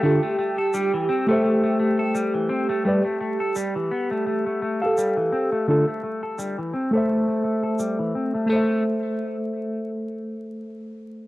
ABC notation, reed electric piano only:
X:1
M:4/4
L:1/16
Q:"Swing 16ths" 1/4=85
K:Am
V:1 name="Reed electric piano"
[D,DFA] z6 [A,Ace]8- [A,Ace] | [G,GBd] z8 z2 [GAf]4- [GAf] | [D,DFA] z6 [A,Ace]8- [A,Ace] | [A,Ace]16 |]